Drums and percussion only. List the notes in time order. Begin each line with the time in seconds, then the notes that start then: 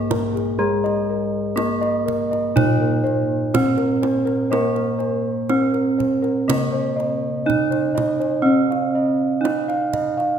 0.11 kendang slap, kendang high, kendang low
0.37 kendang slap
0.86 kendang slap
1.57 kendang high
1.83 kendang slap
2.08 kendang low
2.33 kendang slap
2.57 kendang low
3.07 kendang slap
3.55 kendang slap, kendang high, kendang low
3.78 kendang slap
4.03 kendang slap, kendang high
4.27 kendang slap
4.53 kendang high
4.76 kendang slap
5.00 kendang slap
5.49 kendang slap, kendang high
5.74 kendang slap
6.00 kendang low
6.24 kendang slap
6.50 kendang high, kendang low
7.00 kendang slap
7.50 kendang slap, kendang low
7.72 kendang slap
7.98 kendang slap, kendang high, kendang low
8.21 kendang slap
8.72 kendang slap
9.45 kendang high
9.70 kendang slap
9.93 kendang low
10.20 kendang slap